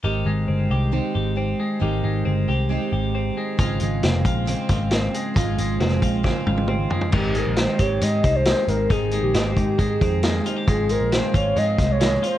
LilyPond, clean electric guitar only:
\new Staff \with { instrumentName = "Clean electric guitar" } { \time 4/4 \key aes \major \tempo 4 = 136 <ees g'>8 aes8 c'8 g'8 c'8 g'8 c'8 aes8 | <ees g'>8 aes8 c'8 g'8 c'8 g'8 c'8 aes8 | <aes f'>8 aes8 c'8 f'8 c'8 f'8 c'8 aes8 | <aes f'>8 aes8 c'8 f'8 c'8 f'8 c'8 aes8 |
ees8 aes8 c'8 g'8 aes8 c'8 aes4 | ees8 aes8 c'4 aes8 c'8 aes8 f'16 g'16 | aes8 aes8 c'8 f'8 aes4 aes8 f'8 | }